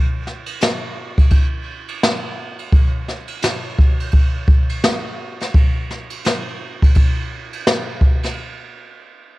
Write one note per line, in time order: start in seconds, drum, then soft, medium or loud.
0.27 snare soft
0.46 ride medium
0.61 snare medium
0.61 hi-hat pedal soft
0.61 ride medium
1.18 kick medium
1.18 ride medium
1.30 kick medium
1.30 ride medium
1.88 ride medium
2.03 snare medium
2.03 hi-hat pedal soft
2.03 ride medium
2.59 ride medium
2.72 kick medium
2.72 ride medium
3.08 snare soft
3.28 ride medium
3.42 snare medium
3.42 hi-hat pedal medium
3.42 ride medium
3.78 kick medium
4.00 ride medium
4.11 kick medium
4.11 ride medium
4.48 kick medium
4.69 ride medium
4.84 snare loud
4.84 hi-hat pedal soft
4.84 ride medium
5.40 snare soft
5.40 ride soft
5.54 kick medium
5.54 ride soft
5.91 snare soft
6.10 ride medium
6.25 snare medium
6.25 hi-hat pedal soft
6.25 ride medium
6.82 kick medium
6.82 ride medium
6.95 kick medium
6.95 ride medium
7.53 ride medium
7.67 snare loud
7.67 hi-hat pedal soft
7.67 ride medium
8.01 kick medium
8.23 snare soft
8.23 ride medium